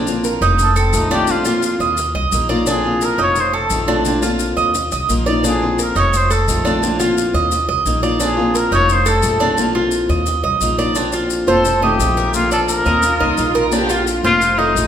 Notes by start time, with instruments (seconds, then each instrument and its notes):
Already playing: upright bass A#1, cuban tres D4
0.07 steel-string acoustic guitar A#3 C4 F4, maracas
0.24 cuban tres A#4, maracas
0.41 upright bass F1, cuban tres D#4, maracas
0.59 trumpet A4, muted steel-string acoustic guitar stroke, maracas
0.76 trumpet C4, cuban tres A4, maracas
0.93 upright bass A#1, steel-string acoustic guitar D#3 A3 C4 F4, trumpet D#4, maracas
1.10 steel-string acoustic guitar D#3 A3 C4 F4, cuban tres D4, trumpet G4, maracas
1.27 steel-string acoustic guitar D3 A#3 C4 F4, trumpet F4, maracas
1.45 steel-string acoustic guitar A#3 C4 F4, cuban tres F4, maracas
1.63 maracas
1.80 upright bass D#2, cuban tres D#5, maracas
1.97 muted steel-string acoustic guitar stroke, maracas
2.14 upright bass C2, cuban tres D#5
2.32 upright bass A#1, steel-string acoustic guitar A#3 D#4 F4 A#4, maracas
2.49 steel-string acoustic guitar A#3 D#4 F4 A#4, cuban tres D5, maracas
2.66 steel-string acoustic guitar D3 A#3 C4 F4, cuban tres D4, trumpet G#4, maracas
2.84 steel-string acoustic guitar A#3 C4 F4
3.01 cuban tres A#4, trumpet A#4, maracas
3.18 upright bass F1, cuban tres D#4, trumpet C#5, maracas
3.36 muted steel-string acoustic guitar stroke, maracas
3.40 trumpet C5
3.53 cuban tres A4, trumpet A4
3.70 upright bass A#1, steel-string acoustic guitar D#3 A3 C4 F4, maracas
3.88 steel-string acoustic guitar D#3 A3 C4 F4, cuban tres D4, maracas
4.05 steel-string acoustic guitar D3 A#3 C4 F4, maracas
4.22 steel-string acoustic guitar A#3 C4 F4, cuban tres F4, maracas
4.39 maracas
4.57 upright bass D#2, cuban tres D#5, maracas
4.74 muted steel-string acoustic guitar stroke, maracas
4.92 upright bass C2, cuban tres D#5, maracas
5.09 upright bass A#1, steel-string acoustic guitar A#3 D#4 F4 A#4, maracas
5.26 steel-string acoustic guitar A#3 D#4 F4 A#4, cuban tres D5, maracas
5.44 steel-string acoustic guitar D3 A#3 C4 F4, cuban tres D4, maracas
5.48 trumpet G#4
5.62 steel-string acoustic guitar A#3 C4 F4
5.79 cuban tres A#4, maracas
5.83 trumpet A#4
5.95 upright bass F1, cuban tres D#4, trumpet C#5, maracas
6.13 trumpet C5, muted steel-string acoustic guitar stroke, maracas
6.30 cuban tres A4, trumpet A4, maracas
6.47 upright bass A#1, steel-string acoustic guitar D#3 A3 C4 F4, maracas
6.65 steel-string acoustic guitar D#3 A3 C4 F4, cuban tres D4, maracas
6.82 steel-string acoustic guitar D3 A#3 C4 F4, maracas
6.99 steel-string acoustic guitar A#3 C4 F4, cuban tres F4, maracas
7.18 maracas
7.34 upright bass D#2, cuban tres D#5, maracas
7.51 muted steel-string acoustic guitar stroke, maracas
7.68 upright bass C2, cuban tres D#5
7.86 upright bass A#1, steel-string acoustic guitar A#3 D#4 F4 A#4, maracas
8.03 steel-string acoustic guitar A#3 D#4 F4 A#4, cuban tres D5, maracas
8.19 steel-string acoustic guitar D3 A#3 C4 F4, cuban tres D4, maracas
8.24 trumpet G#4
8.37 steel-string acoustic guitar A#3 C4 F4
8.55 cuban tres A#4, trumpet A#4, maracas
8.71 upright bass F1, cuban tres D#4, trumpet C#5, maracas
8.89 trumpet C5, muted steel-string acoustic guitar stroke, maracas
9.06 cuban tres A4, trumpet A4, maracas
9.23 upright bass A#1, steel-string acoustic guitar D#3 A3 C4 F4, maracas
9.40 steel-string acoustic guitar D#3 A3 C4 F4, cuban tres D4, maracas
9.58 steel-string acoustic guitar D3 A#3 C4 F4, maracas
9.75 steel-string acoustic guitar A#3 C4 F4, cuban tres F4
9.91 maracas
10.09 upright bass D#2, cuban tres D#5, maracas
10.26 muted steel-string acoustic guitar stroke, maracas
10.43 upright bass C2, cuban tres D#5
10.60 upright bass A#1, steel-string acoustic guitar A#3 D#4 F4 A#4, maracas
10.79 steel-string acoustic guitar A#3 D#4 F4 A#4, cuban tres D5, maracas
10.95 steel-string acoustic guitar D3 A#3 C4 F4, cuban tres D4, maracas
11.12 cuban tres F4, maracas
11.30 maracas
11.47 upright bass F1, steel-string acoustic guitar A#3 C4 F4, trumpet A4, cuban tres C5, maracas
11.65 muted steel-string acoustic guitar stroke, maracas
11.82 steel-string acoustic guitar D#3 A3 C4 F4, trumpet G4, cuban tres D#5
11.99 upright bass A#1, steel-string acoustic guitar D#3 A3 C4 F4, maracas
12.17 cuban tres A#4, maracas
12.34 steel-string acoustic guitar D3 A#3 C4 F4, trumpet F4, maracas
12.51 trumpet A4, cuban tres D5, maracas
12.68 trumpet A#4, maracas
12.85 upright bass D#2, steel-string acoustic guitar A#3 C4 F4, cuban tres D#5, maracas
13.02 violin section F4, muted steel-string acoustic guitar stroke, maracas
13.20 upright bass C2, steel-string acoustic guitar A#3 D#4 F4 A#4, cuban tres D#5
13.37 upright bass A#1, steel-string acoustic guitar A#3 D#4 F4 A#4, maracas
13.55 cuban tres A#4, maracas
13.71 steel-string acoustic guitar D3 A#3 C4 F4, cuban tres D4, violin section G4, maracas
13.89 violin section F4, cuban tres F4, maracas
14.07 maracas
14.23 upright bass F1, steel-string acoustic guitar A#3 C4 F4, trumpet F4, cuban tres C5, maracas
14.40 muted steel-string acoustic guitar stroke, maracas
14.57 steel-string acoustic guitar D#3 A3 C4 F4, trumpet D#4, cuban tres D#5
14.75 upright bass A#1, steel-string acoustic guitar D#3 A3 C4 F4, maracas